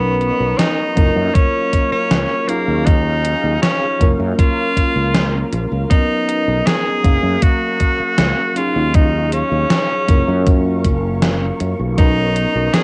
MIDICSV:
0, 0, Header, 1, 7, 480
1, 0, Start_track
1, 0, Key_signature, 6, "major"
1, 0, Tempo, 759494
1, 1813, Time_signature, 4, 2, 24, 8
1, 8111, End_track
2, 0, Start_track
2, 0, Title_t, "String machine"
2, 0, Program_c, 0, 50
2, 0, Note_on_c, 0, 59, 78
2, 0, Note_on_c, 0, 75, 74
2, 0, Note_on_c, 0, 82, 75
2, 0, Note_on_c, 0, 85, 89
2, 607, Note_off_c, 0, 59, 0
2, 607, Note_off_c, 0, 82, 0
2, 608, Note_off_c, 0, 75, 0
2, 614, Note_on_c, 0, 70, 80
2, 615, Note_on_c, 0, 77, 74
2, 1564, Note_off_c, 0, 70, 0
2, 1576, Note_on_c, 0, 68, 81
2, 2525, Note_off_c, 0, 68, 0
2, 2533, Note_on_c, 0, 70, 81
2, 3709, Note_off_c, 0, 77, 0
2, 3721, Note_off_c, 0, 70, 0
2, 3734, Note_on_c, 0, 59, 79
2, 3735, Note_on_c, 0, 82, 74
2, 3736, Note_on_c, 0, 75, 72
2, 4426, Note_off_c, 0, 85, 0
2, 4446, Note_off_c, 0, 59, 0
2, 4447, Note_off_c, 0, 75, 0
2, 4447, Note_off_c, 0, 82, 0
2, 4453, Note_on_c, 0, 70, 82
2, 4454, Note_on_c, 0, 85, 93
2, 4455, Note_on_c, 0, 77, 73
2, 5403, Note_off_c, 0, 70, 0
2, 5404, Note_off_c, 0, 77, 0
2, 5415, Note_on_c, 0, 68, 81
2, 5415, Note_on_c, 0, 77, 75
2, 6364, Note_off_c, 0, 68, 0
2, 6364, Note_off_c, 0, 77, 0
2, 6372, Note_on_c, 0, 77, 76
2, 6374, Note_on_c, 0, 70, 85
2, 7560, Note_off_c, 0, 77, 0
2, 7562, Note_off_c, 0, 70, 0
2, 7572, Note_on_c, 0, 59, 77
2, 7573, Note_on_c, 0, 75, 75
2, 7575, Note_on_c, 0, 82, 77
2, 8111, Note_off_c, 0, 59, 0
2, 8111, Note_off_c, 0, 75, 0
2, 8111, Note_off_c, 0, 82, 0
2, 8111, Note_off_c, 0, 85, 0
2, 8111, End_track
3, 0, Start_track
3, 0, Title_t, "Tenor saxophone"
3, 0, Program_c, 1, 66
3, 0, Note_on_c, 1, 59, 98
3, 369, Note_on_c, 1, 63, 99
3, 378, Note_off_c, 1, 59, 0
3, 848, Note_on_c, 1, 61, 99
3, 857, Note_off_c, 1, 63, 0
3, 1207, Note_off_c, 1, 61, 0
3, 1211, Note_on_c, 1, 61, 100
3, 1568, Note_on_c, 1, 58, 88
3, 1578, Note_off_c, 1, 61, 0
3, 1806, Note_on_c, 1, 63, 113
3, 1815, Note_off_c, 1, 58, 0
3, 2285, Note_off_c, 1, 63, 0
3, 2289, Note_on_c, 1, 61, 101
3, 2579, Note_off_c, 1, 61, 0
3, 2776, Note_on_c, 1, 65, 114
3, 3469, Note_off_c, 1, 65, 0
3, 3730, Note_on_c, 1, 63, 114
3, 4213, Note_on_c, 1, 68, 116
3, 4222, Note_off_c, 1, 63, 0
3, 4696, Note_on_c, 1, 66, 111
3, 4705, Note_off_c, 1, 68, 0
3, 5415, Note_on_c, 1, 65, 95
3, 5424, Note_off_c, 1, 66, 0
3, 5658, Note_on_c, 1, 63, 103
3, 5668, Note_off_c, 1, 65, 0
3, 5895, Note_off_c, 1, 63, 0
3, 5899, Note_on_c, 1, 61, 97
3, 6830, Note_off_c, 1, 61, 0
3, 7576, Note_on_c, 1, 63, 116
3, 8053, Note_on_c, 1, 68, 117
3, 8063, Note_off_c, 1, 63, 0
3, 8111, Note_off_c, 1, 68, 0
3, 8111, End_track
4, 0, Start_track
4, 0, Title_t, "Synth keys"
4, 0, Program_c, 2, 88
4, 0, Note_on_c, 2, 54, 77
4, 0, Note_on_c, 2, 59, 72
4, 0, Note_on_c, 2, 61, 71
4, 0, Note_on_c, 2, 63, 71
4, 0, Note_on_c, 2, 70, 85
4, 3, Control_c, 2, 64, 127
4, 561, Note_off_c, 2, 54, 0
4, 563, Note_off_c, 2, 59, 0
4, 565, Note_off_c, 2, 61, 0
4, 568, Note_off_c, 2, 63, 0
4, 570, Note_off_c, 2, 70, 0
4, 601, Note_on_c, 2, 54, 82
4, 605, Note_on_c, 2, 58, 76
4, 610, Note_on_c, 2, 61, 75
4, 616, Note_on_c, 2, 65, 75
4, 620, Note_on_c, 2, 70, 88
4, 621, Control_c, 2, 64, 0
4, 720, Control_c, 2, 64, 127
4, 1519, Note_off_c, 2, 54, 0
4, 1521, Note_off_c, 2, 58, 0
4, 1524, Note_off_c, 2, 61, 0
4, 1527, Note_off_c, 2, 65, 0
4, 1529, Note_off_c, 2, 70, 0
4, 1563, Note_on_c, 2, 54, 81
4, 1568, Note_on_c, 2, 61, 68
4, 1573, Note_on_c, 2, 63, 73
4, 1578, Note_on_c, 2, 65, 71
4, 1580, Control_c, 2, 64, 0
4, 1582, Note_on_c, 2, 68, 87
4, 1699, Control_c, 2, 64, 127
4, 2480, Note_off_c, 2, 54, 0
4, 2483, Note_off_c, 2, 61, 0
4, 2485, Note_off_c, 2, 63, 0
4, 2488, Note_off_c, 2, 65, 0
4, 2490, Note_off_c, 2, 68, 0
4, 2522, Note_on_c, 2, 54, 87
4, 2527, Note_on_c, 2, 58, 83
4, 2532, Note_on_c, 2, 61, 82
4, 2536, Note_on_c, 2, 65, 83
4, 2540, Note_on_c, 2, 70, 100
4, 2542, Control_c, 2, 64, 0
4, 2668, Control_c, 2, 64, 127
4, 3680, Note_off_c, 2, 54, 0
4, 3682, Note_off_c, 2, 58, 0
4, 3685, Note_off_c, 2, 61, 0
4, 3687, Note_off_c, 2, 65, 0
4, 3689, Note_off_c, 2, 70, 0
4, 3721, Note_on_c, 2, 54, 79
4, 3725, Note_on_c, 2, 59, 67
4, 3730, Note_on_c, 2, 61, 71
4, 3735, Note_on_c, 2, 63, 70
4, 3739, Note_on_c, 2, 70, 84
4, 3740, Control_c, 2, 64, 0
4, 3835, Control_c, 2, 64, 127
4, 4399, Note_off_c, 2, 54, 0
4, 4401, Note_off_c, 2, 59, 0
4, 4404, Note_off_c, 2, 61, 0
4, 4406, Note_off_c, 2, 63, 0
4, 4408, Note_off_c, 2, 70, 0
4, 4443, Note_on_c, 2, 54, 81
4, 4448, Note_on_c, 2, 58, 74
4, 4453, Note_on_c, 2, 61, 74
4, 4457, Note_on_c, 2, 77, 71
4, 4462, Control_c, 2, 64, 0
4, 4462, Note_on_c, 2, 70, 85
4, 4580, Control_c, 2, 64, 127
4, 5360, Note_off_c, 2, 54, 0
4, 5363, Note_off_c, 2, 58, 0
4, 5365, Note_off_c, 2, 61, 0
4, 5367, Note_off_c, 2, 77, 0
4, 5370, Note_off_c, 2, 70, 0
4, 5404, Note_on_c, 2, 54, 77
4, 5408, Note_on_c, 2, 61, 71
4, 5413, Note_on_c, 2, 63, 70
4, 5419, Note_on_c, 2, 65, 74
4, 5421, Control_c, 2, 64, 0
4, 5423, Note_on_c, 2, 68, 85
4, 5528, Control_c, 2, 64, 127
4, 6321, Note_off_c, 2, 54, 0
4, 6323, Note_off_c, 2, 61, 0
4, 6325, Note_off_c, 2, 63, 0
4, 6328, Note_off_c, 2, 65, 0
4, 6330, Note_off_c, 2, 68, 0
4, 6364, Note_on_c, 2, 54, 87
4, 6368, Note_on_c, 2, 58, 81
4, 6372, Note_on_c, 2, 61, 82
4, 6377, Note_on_c, 2, 65, 84
4, 6382, Control_c, 2, 64, 0
4, 6382, Note_on_c, 2, 70, 97
4, 6488, Control_c, 2, 64, 127
4, 7521, Note_off_c, 2, 54, 0
4, 7523, Note_off_c, 2, 58, 0
4, 7525, Note_off_c, 2, 61, 0
4, 7527, Note_off_c, 2, 65, 0
4, 7530, Note_off_c, 2, 70, 0
4, 7560, Note_on_c, 2, 54, 78
4, 7565, Note_on_c, 2, 59, 71
4, 7570, Note_on_c, 2, 61, 68
4, 7574, Note_on_c, 2, 63, 68
4, 7580, Note_on_c, 2, 70, 86
4, 7582, Control_c, 2, 64, 0
4, 7686, Control_c, 2, 64, 127
4, 8111, Note_off_c, 2, 54, 0
4, 8111, Note_off_c, 2, 59, 0
4, 8111, Note_off_c, 2, 61, 0
4, 8111, Note_off_c, 2, 63, 0
4, 8111, Note_off_c, 2, 70, 0
4, 8111, End_track
5, 0, Start_track
5, 0, Title_t, "Fretless electric bass"
5, 0, Program_c, 3, 35
5, 0, Note_on_c, 3, 35, 91
5, 188, Note_off_c, 3, 35, 0
5, 254, Note_on_c, 3, 35, 90
5, 333, Note_off_c, 3, 35, 0
5, 614, Note_on_c, 3, 30, 86
5, 694, Note_off_c, 3, 30, 0
5, 735, Note_on_c, 3, 42, 100
5, 813, Note_off_c, 3, 42, 0
5, 1333, Note_on_c, 3, 37, 91
5, 1413, Note_off_c, 3, 37, 0
5, 1693, Note_on_c, 3, 39, 80
5, 2108, Note_off_c, 3, 39, 0
5, 2173, Note_on_c, 3, 39, 94
5, 2252, Note_off_c, 3, 39, 0
5, 2533, Note_on_c, 3, 30, 81
5, 2613, Note_off_c, 3, 30, 0
5, 2652, Note_on_c, 3, 42, 95
5, 2732, Note_off_c, 3, 42, 0
5, 3133, Note_on_c, 3, 37, 82
5, 3428, Note_off_c, 3, 37, 0
5, 3494, Note_on_c, 3, 34, 95
5, 3573, Note_off_c, 3, 34, 0
5, 3614, Note_on_c, 3, 37, 92
5, 3693, Note_off_c, 3, 37, 0
5, 4095, Note_on_c, 3, 35, 95
5, 4173, Note_off_c, 3, 35, 0
5, 4454, Note_on_c, 3, 30, 85
5, 4533, Note_off_c, 3, 30, 0
5, 4572, Note_on_c, 3, 42, 103
5, 4652, Note_off_c, 3, 42, 0
5, 5173, Note_on_c, 3, 37, 91
5, 5253, Note_off_c, 3, 37, 0
5, 5535, Note_on_c, 3, 39, 78
5, 5949, Note_off_c, 3, 39, 0
5, 6013, Note_on_c, 3, 39, 93
5, 6092, Note_off_c, 3, 39, 0
5, 6375, Note_on_c, 3, 30, 82
5, 6454, Note_off_c, 3, 30, 0
5, 6498, Note_on_c, 3, 42, 99
5, 6855, Note_on_c, 3, 30, 87
5, 6864, Note_off_c, 3, 42, 0
5, 7270, Note_off_c, 3, 30, 0
5, 7334, Note_on_c, 3, 42, 89
5, 7414, Note_off_c, 3, 42, 0
5, 7454, Note_on_c, 3, 35, 91
5, 7868, Note_off_c, 3, 35, 0
5, 7934, Note_on_c, 3, 35, 96
5, 8013, Note_off_c, 3, 35, 0
5, 8111, End_track
6, 0, Start_track
6, 0, Title_t, "Muted fretless electric bass strokes"
6, 1213, Note_on_c, 9, 29, 42
6, 1276, Note_off_c, 9, 29, 0
6, 5055, Note_on_c, 9, 29, 42
6, 5118, Note_off_c, 9, 29, 0
6, 8111, End_track
7, 0, Start_track
7, 0, Title_t, "Drums"
7, 133, Note_on_c, 9, 42, 65
7, 196, Note_off_c, 9, 42, 0
7, 374, Note_on_c, 9, 38, 111
7, 374, Note_on_c, 9, 42, 75
7, 437, Note_off_c, 9, 38, 0
7, 437, Note_off_c, 9, 42, 0
7, 613, Note_on_c, 9, 42, 63
7, 614, Note_on_c, 9, 36, 94
7, 676, Note_off_c, 9, 42, 0
7, 677, Note_off_c, 9, 36, 0
7, 853, Note_on_c, 9, 42, 74
7, 854, Note_on_c, 9, 36, 106
7, 917, Note_off_c, 9, 36, 0
7, 917, Note_off_c, 9, 42, 0
7, 1093, Note_on_c, 9, 42, 64
7, 1094, Note_on_c, 9, 36, 55
7, 1156, Note_off_c, 9, 42, 0
7, 1157, Note_off_c, 9, 36, 0
7, 1333, Note_on_c, 9, 38, 113
7, 1333, Note_on_c, 9, 42, 75
7, 1396, Note_off_c, 9, 38, 0
7, 1396, Note_off_c, 9, 42, 0
7, 1572, Note_on_c, 9, 42, 62
7, 1635, Note_off_c, 9, 42, 0
7, 1811, Note_on_c, 9, 42, 75
7, 1814, Note_on_c, 9, 36, 105
7, 1874, Note_off_c, 9, 42, 0
7, 1877, Note_off_c, 9, 36, 0
7, 2052, Note_on_c, 9, 42, 64
7, 2115, Note_off_c, 9, 42, 0
7, 2293, Note_on_c, 9, 38, 117
7, 2293, Note_on_c, 9, 42, 82
7, 2356, Note_off_c, 9, 38, 0
7, 2356, Note_off_c, 9, 42, 0
7, 2533, Note_on_c, 9, 36, 95
7, 2534, Note_on_c, 9, 42, 62
7, 2596, Note_off_c, 9, 36, 0
7, 2597, Note_off_c, 9, 42, 0
7, 2773, Note_on_c, 9, 36, 108
7, 2774, Note_on_c, 9, 42, 79
7, 2836, Note_off_c, 9, 36, 0
7, 2837, Note_off_c, 9, 42, 0
7, 3013, Note_on_c, 9, 36, 56
7, 3015, Note_on_c, 9, 42, 64
7, 3076, Note_off_c, 9, 36, 0
7, 3078, Note_off_c, 9, 42, 0
7, 3252, Note_on_c, 9, 38, 110
7, 3252, Note_on_c, 9, 42, 75
7, 3315, Note_off_c, 9, 38, 0
7, 3315, Note_off_c, 9, 42, 0
7, 3493, Note_on_c, 9, 42, 67
7, 3556, Note_off_c, 9, 42, 0
7, 3733, Note_on_c, 9, 36, 114
7, 3734, Note_on_c, 9, 42, 75
7, 3797, Note_off_c, 9, 36, 0
7, 3797, Note_off_c, 9, 42, 0
7, 3974, Note_on_c, 9, 42, 72
7, 4037, Note_off_c, 9, 42, 0
7, 4215, Note_on_c, 9, 38, 117
7, 4215, Note_on_c, 9, 42, 85
7, 4279, Note_off_c, 9, 38, 0
7, 4279, Note_off_c, 9, 42, 0
7, 4454, Note_on_c, 9, 36, 102
7, 4454, Note_on_c, 9, 42, 66
7, 4517, Note_off_c, 9, 36, 0
7, 4517, Note_off_c, 9, 42, 0
7, 4692, Note_on_c, 9, 42, 79
7, 4694, Note_on_c, 9, 36, 106
7, 4755, Note_off_c, 9, 42, 0
7, 4757, Note_off_c, 9, 36, 0
7, 4930, Note_on_c, 9, 42, 67
7, 4934, Note_on_c, 9, 36, 58
7, 4994, Note_off_c, 9, 42, 0
7, 4997, Note_off_c, 9, 36, 0
7, 5170, Note_on_c, 9, 38, 112
7, 5170, Note_on_c, 9, 42, 80
7, 5233, Note_off_c, 9, 38, 0
7, 5233, Note_off_c, 9, 42, 0
7, 5410, Note_on_c, 9, 42, 69
7, 5473, Note_off_c, 9, 42, 0
7, 5651, Note_on_c, 9, 42, 80
7, 5654, Note_on_c, 9, 36, 114
7, 5714, Note_off_c, 9, 42, 0
7, 5717, Note_off_c, 9, 36, 0
7, 5891, Note_on_c, 9, 42, 70
7, 5954, Note_off_c, 9, 42, 0
7, 6131, Note_on_c, 9, 38, 127
7, 6131, Note_on_c, 9, 42, 82
7, 6194, Note_off_c, 9, 38, 0
7, 6194, Note_off_c, 9, 42, 0
7, 6373, Note_on_c, 9, 42, 65
7, 6375, Note_on_c, 9, 36, 103
7, 6436, Note_off_c, 9, 42, 0
7, 6438, Note_off_c, 9, 36, 0
7, 6614, Note_on_c, 9, 42, 84
7, 6615, Note_on_c, 9, 36, 116
7, 6677, Note_off_c, 9, 42, 0
7, 6678, Note_off_c, 9, 36, 0
7, 6854, Note_on_c, 9, 36, 62
7, 6854, Note_on_c, 9, 42, 64
7, 6917, Note_off_c, 9, 42, 0
7, 6918, Note_off_c, 9, 36, 0
7, 7092, Note_on_c, 9, 38, 123
7, 7092, Note_on_c, 9, 42, 84
7, 7155, Note_off_c, 9, 38, 0
7, 7155, Note_off_c, 9, 42, 0
7, 7332, Note_on_c, 9, 42, 69
7, 7395, Note_off_c, 9, 42, 0
7, 7571, Note_on_c, 9, 42, 75
7, 7574, Note_on_c, 9, 36, 120
7, 7634, Note_off_c, 9, 42, 0
7, 7637, Note_off_c, 9, 36, 0
7, 7812, Note_on_c, 9, 42, 67
7, 7875, Note_off_c, 9, 42, 0
7, 8050, Note_on_c, 9, 38, 120
7, 8050, Note_on_c, 9, 42, 81
7, 8111, Note_off_c, 9, 38, 0
7, 8111, Note_off_c, 9, 42, 0
7, 8111, End_track
0, 0, End_of_file